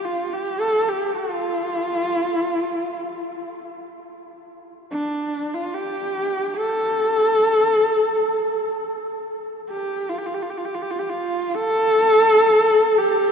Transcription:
horsehead fiddle
0.05 F4
0.33 G4
0.60 A4
0.88 G4
1.17 F4
4.91 D4
5.54 F4
5.75 G4
6.58 A4
9.69 G4
10.09 F4
10.18 G4
10.26 F4
10.34 G4
10.42 F4
10.50 G4
10.58 F4
10.65 G4
10.74 F4
10.82 G4
10.91 F4
10.99 G4
11.09 F4
11.55 A4
12.98 G4

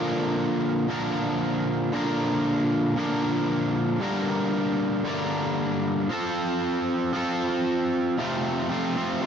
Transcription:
overdriven electric guitar
Already playing: A#2 D3 F3 A#3 D4 A#4
0.88 A#2 D3 F3 A#3 D4 A#4
1.92 A#2 D3 F3 A#3 D4 A#4
2.96 A#2 D3 F3 A#3 D4 A#4
4.00 G2 D3 G3 A#3 D4
4.05 A#4
5.04 G2 D3 G3 A#3 D4 A#4
6.09 F3 C4 F4 A4
7.13 F3 C4 F4 A4
8.18 F2 C3 F3 A3 C4 F4
8.69 F2 C3 F3 A3 C4 F4
8.95 F2 C3 F3 A3 C4 F4
9.21 F2 C3 F3 A3

